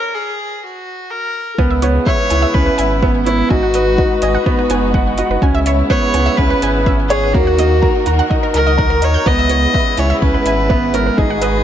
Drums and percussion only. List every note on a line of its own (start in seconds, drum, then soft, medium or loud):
1.58 kick loud
1.82 closed hi-hat medium
2.06 kick loud
2.30 closed hi-hat medium
2.55 kick loud
2.79 closed hi-hat medium
3.03 kick loud
3.26 closed hi-hat medium
3.50 kick loud
3.74 closed hi-hat medium
3.98 kick loud
4.22 closed hi-hat medium
4.46 kick loud
4.70 closed hi-hat medium
4.94 kick loud
5.18 closed hi-hat medium
5.42 kick loud
5.66 closed hi-hat medium
5.90 kick loud
6.14 closed hi-hat medium
6.38 kick loud
6.62 closed hi-hat medium
6.86 kick loud
7.10 closed hi-hat medium
7.34 kick loud
7.59 closed hi-hat medium
7.83 kick loud
8.06 closed hi-hat medium
8.31 kick loud
8.54 closed hi-hat medium
8.79 kick loud
9.02 closed hi-hat medium
9.26 kick loud
9.49 closed hi-hat medium
9.74 kick loud
9.97 closed hi-hat medium
10.22 kick loud
10.46 closed hi-hat medium
10.70 kick loud
10.94 closed hi-hat medium
11.18 kick loud
11.42 closed hi-hat medium